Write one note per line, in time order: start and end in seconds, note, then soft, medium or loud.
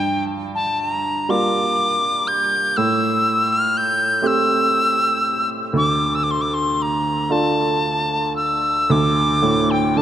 0.00 2.71 G2 soft
0.00 0.25 G5 medium
0.55 0.82 A5 medium
0.80 1.32 A#5 medium
1.29 2.71 G3 soft
1.29 2.72 A#3 soft
1.29 2.72 F4 soft
1.29 2.29 D6 medium
2.28 2.78 G6 medium
2.77 5.71 A2 medium
2.77 3.54 E6 medium
3.52 3.79 F6 medium
3.77 4.28 G6 medium
4.22 5.70 A3 soft
4.22 5.70 C4 soft
4.22 5.70 G4 soft
4.27 5.50 E6 medium
5.73 8.86 D2 soft
5.73 6.17 D6 medium
6.15 6.25 E6 medium
6.24 6.33 D6 medium
6.31 6.43 C6 medium
6.41 6.56 D6 medium
6.54 6.84 C6 medium
6.82 7.33 A#5 medium
7.30 8.86 A3 soft
7.30 8.86 D4 soft
7.30 8.86 F4 soft
7.30 8.36 A5 medium
8.36 8.93 E6 medium
8.90 10.02 D2 medium
8.90 9.72 D6 medium
9.42 10.02 A2 soft
9.71 9.99 G5 medium
9.97 10.02 D3 soft
9.97 10.02 A5 medium